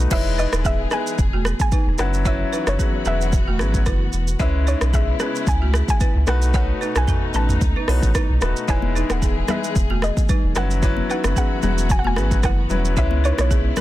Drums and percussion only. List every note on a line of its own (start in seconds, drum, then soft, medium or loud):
0.11 kick loud
0.11 crash loud
0.11 shaker medium
0.39 shaker soft
0.53 cross-stick loud
0.53 shaker medium
0.65 kick medium
0.65 shaker medium
0.91 cross-stick medium
0.91 shaker medium
1.07 shaker medium
1.18 kick loud
1.18 shaker medium
1.45 cross-stick loud
1.45 shaker medium
1.60 kick medium
1.60 shaker medium
1.72 kick loud
1.72 shaker medium
1.98 cross-stick loud
1.98 shaker medium
2.14 shaker medium
2.25 kick loud
2.25 shaker medium
2.53 shaker medium
2.67 cross-stick loud
2.67 shaker medium
2.79 kick medium
2.79 shaker medium
3.05 shaker medium
3.21 shaker medium
3.33 kick loud
3.33 shaker medium
3.59 cross-stick loud
3.59 shaker medium
3.74 kick loud
3.74 shaker medium
3.86 kick loud
3.86 cross-stick loud
3.86 shaker medium
4.13 shaker medium
4.28 shaker medium
4.40 kick loud
4.40 shaker medium
4.67 shaker medium
4.81 cross-stick loud
4.81 shaker medium
4.93 kick medium
4.93 shaker medium
5.19 cross-stick medium
5.19 shaker medium
5.36 shaker medium
5.47 kick loud
5.47 shaker medium
5.74 cross-stick loud
5.74 shaker medium
5.88 kick medium
5.88 shaker medium
6.00 kick loud
6.00 shaker medium
6.27 cross-stick loud
6.27 shaker medium
6.42 shaker medium
6.54 kick loud
6.54 shaker medium
6.82 shaker medium
6.96 cross-stick loud
6.96 shaker medium
7.07 kick medium
7.07 mid tom medium
7.07 shaker medium
7.34 shaker medium
7.49 mid tom medium
7.49 shaker medium
7.61 kick loud
7.61 shaker medium
7.88 cross-stick loud
7.88 open hi-hat medium
7.88 shaker soft
8.03 kick medium
8.03 shaker medium
8.15 kick loud
8.15 cross-stick loud
8.15 shaker medium
8.41 cross-stick loud
8.41 shaker medium
8.56 shaker medium
8.68 kick loud
8.68 shaker medium
8.82 high conga medium
8.96 shaker soft
9.10 cross-stick loud
9.10 high conga medium
9.10 shaker medium
9.22 kick medium
9.22 shaker medium
9.48 cross-stick medium
9.48 high conga loud
9.48 low conga loud
9.48 shaker medium
9.64 shaker medium
9.76 kick loud
9.76 shaker medium
9.90 high conga medium
10.02 cross-stick loud
10.02 shaker medium
10.17 kick medium
10.17 shaker medium
10.29 kick loud
10.29 low conga medium
10.29 shaker medium
10.55 cross-stick loud
10.55 low conga medium
10.55 shaker medium
10.71 shaker medium
10.83 kick loud
10.83 shaker medium
10.97 high conga medium
11.10 shaker medium
11.24 cross-stick loud
11.24 high conga medium
11.24 shaker medium
11.36 kick medium
11.36 shaker medium
11.62 high conga loud
11.62 low conga loud
11.62 shaker medium
11.78 shaker medium
11.90 kick loud
11.90 shaker medium
12.04 high conga medium
12.16 cross-stick loud
12.16 shaker medium
12.31 kick medium
12.31 shaker medium
12.43 kick loud
12.43 cross-stick loud
12.43 low conga medium
12.43 shaker medium
12.70 low conga medium
12.70 shaker medium
12.85 shaker medium
12.97 kick loud
12.97 shaker medium
13.11 high conga medium
13.25 shaker medium
13.38 cross-stick loud
13.38 high conga medium
13.38 shaker medium
13.51 kick medium
13.51 shaker medium
13.77 cross-stick medium
13.77 high conga loud
13.77 low conga medium
13.77 shaker medium